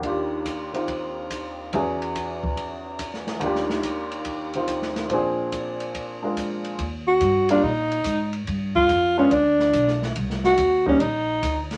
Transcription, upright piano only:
0, 0, Header, 1, 2, 480
1, 0, Start_track
1, 0, Key_signature, -3, "major"
1, 0, Tempo, 421644
1, 36, Time_signature, 4, 2, 24, 8
1, 13401, End_track
2, 0, Start_track
2, 0, Title_t, "Upright piano"
2, 0, Program_c, 0, 0
2, 0, Note_on_c, 0, 39, 44
2, 0, Note_on_c, 0, 51, 41
2, 32, Note_on_c, 0, 62, 39
2, 58, Note_on_c, 0, 65, 38
2, 88, Note_on_c, 0, 67, 47
2, 815, Note_off_c, 0, 51, 0
2, 832, Note_on_c, 0, 51, 35
2, 845, Note_on_c, 0, 60, 30
2, 848, Note_off_c, 0, 65, 0
2, 859, Note_on_c, 0, 63, 31
2, 865, Note_on_c, 0, 65, 35
2, 1924, Note_off_c, 0, 39, 0
2, 1956, Note_off_c, 0, 51, 0
2, 1957, Note_off_c, 0, 62, 0
2, 1963, Note_off_c, 0, 60, 0
2, 1969, Note_off_c, 0, 63, 0
2, 1972, Note_off_c, 0, 65, 0
2, 1977, Note_on_c, 0, 40, 44
2, 1984, Note_off_c, 0, 67, 0
2, 1985, Note_on_c, 0, 52, 36
2, 1986, Note_on_c, 0, 61, 39
2, 1987, Note_on_c, 0, 66, 37
2, 1993, Note_on_c, 0, 68, 45
2, 3868, Note_on_c, 0, 39, 48
2, 3880, Note_on_c, 0, 51, 47
2, 3889, Note_off_c, 0, 40, 0
2, 3893, Note_off_c, 0, 52, 0
2, 3894, Note_off_c, 0, 61, 0
2, 3894, Note_off_c, 0, 66, 0
2, 3897, Note_off_c, 0, 68, 0
2, 3901, Note_on_c, 0, 62, 45
2, 3910, Note_on_c, 0, 65, 42
2, 3927, Note_on_c, 0, 67, 55
2, 5158, Note_off_c, 0, 51, 0
2, 5176, Note_on_c, 0, 51, 36
2, 5185, Note_off_c, 0, 65, 0
2, 5185, Note_on_c, 0, 60, 33
2, 5193, Note_on_c, 0, 63, 33
2, 5202, Note_on_c, 0, 65, 38
2, 5787, Note_on_c, 0, 46, 44
2, 5794, Note_off_c, 0, 39, 0
2, 5801, Note_off_c, 0, 60, 0
2, 5806, Note_off_c, 0, 51, 0
2, 5811, Note_off_c, 0, 62, 0
2, 5813, Note_on_c, 0, 53, 41
2, 5815, Note_off_c, 0, 63, 0
2, 5818, Note_on_c, 0, 60, 42
2, 5820, Note_off_c, 0, 65, 0
2, 5824, Note_off_c, 0, 67, 0
2, 5833, Note_on_c, 0, 62, 42
2, 5844, Note_on_c, 0, 68, 50
2, 7069, Note_off_c, 0, 62, 0
2, 7085, Note_on_c, 0, 56, 37
2, 7087, Note_on_c, 0, 62, 31
2, 7102, Note_on_c, 0, 65, 32
2, 7113, Note_on_c, 0, 70, 39
2, 7713, Note_off_c, 0, 46, 0
2, 7721, Note_off_c, 0, 56, 0
2, 7721, Note_off_c, 0, 62, 0
2, 7726, Note_off_c, 0, 53, 0
2, 7728, Note_off_c, 0, 60, 0
2, 7729, Note_off_c, 0, 65, 0
2, 7734, Note_off_c, 0, 70, 0
2, 7742, Note_off_c, 0, 68, 0
2, 8539, Note_on_c, 0, 55, 52
2, 8542, Note_on_c, 0, 58, 49
2, 8545, Note_on_c, 0, 65, 63
2, 8547, Note_on_c, 0, 62, 49
2, 8671, Note_off_c, 0, 55, 0
2, 8673, Note_off_c, 0, 58, 0
2, 8675, Note_off_c, 0, 62, 0
2, 8675, Note_off_c, 0, 65, 0
2, 10445, Note_on_c, 0, 56, 48
2, 10445, Note_on_c, 0, 59, 47
2, 10446, Note_on_c, 0, 62, 48
2, 10450, Note_on_c, 0, 65, 56
2, 10583, Note_off_c, 0, 56, 0
2, 10584, Note_off_c, 0, 59, 0
2, 10584, Note_off_c, 0, 62, 0
2, 10586, Note_off_c, 0, 65, 0
2, 12364, Note_on_c, 0, 62, 49
2, 12365, Note_on_c, 0, 55, 50
2, 12365, Note_on_c, 0, 58, 49
2, 12365, Note_on_c, 0, 63, 62
2, 12502, Note_off_c, 0, 62, 0
2, 12503, Note_off_c, 0, 55, 0
2, 12503, Note_off_c, 0, 58, 0
2, 12503, Note_off_c, 0, 63, 0
2, 13401, End_track
0, 0, End_of_file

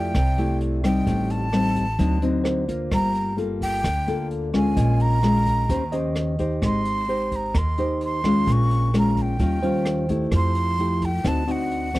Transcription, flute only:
0, 0, Header, 1, 2, 480
1, 0, Start_track
1, 0, Tempo, 462606
1, 1110, Time_signature, 4, 2, 24, 8
1, 12443, End_track
2, 0, Start_track
2, 0, Title_t, "Flute"
2, 0, Program_c, 0, 73
2, 0, Note_on_c, 0, 79, 100
2, 599, Note_off_c, 0, 79, 0
2, 884, Note_on_c, 0, 79, 81
2, 1356, Note_on_c, 0, 81, 98
2, 1371, Note_off_c, 0, 79, 0
2, 2312, Note_off_c, 0, 81, 0
2, 3047, Note_on_c, 0, 82, 103
2, 3484, Note_off_c, 0, 82, 0
2, 3764, Note_on_c, 0, 79, 107
2, 4434, Note_off_c, 0, 79, 0
2, 4730, Note_on_c, 0, 80, 85
2, 5203, Note_on_c, 0, 82, 101
2, 5218, Note_off_c, 0, 80, 0
2, 6154, Note_off_c, 0, 82, 0
2, 6902, Note_on_c, 0, 84, 90
2, 7633, Note_on_c, 0, 82, 85
2, 7649, Note_off_c, 0, 84, 0
2, 7866, Note_on_c, 0, 84, 98
2, 7881, Note_off_c, 0, 82, 0
2, 8326, Note_off_c, 0, 84, 0
2, 8348, Note_on_c, 0, 84, 88
2, 8841, Note_on_c, 0, 85, 105
2, 8857, Note_off_c, 0, 84, 0
2, 9294, Note_off_c, 0, 85, 0
2, 9320, Note_on_c, 0, 82, 87
2, 9563, Note_on_c, 0, 79, 86
2, 9579, Note_off_c, 0, 82, 0
2, 10495, Note_off_c, 0, 79, 0
2, 10748, Note_on_c, 0, 84, 111
2, 11465, Note_on_c, 0, 79, 97
2, 11481, Note_off_c, 0, 84, 0
2, 11699, Note_on_c, 0, 81, 97
2, 11715, Note_off_c, 0, 79, 0
2, 11946, Note_on_c, 0, 78, 94
2, 11962, Note_off_c, 0, 81, 0
2, 12443, Note_off_c, 0, 78, 0
2, 12443, End_track
0, 0, End_of_file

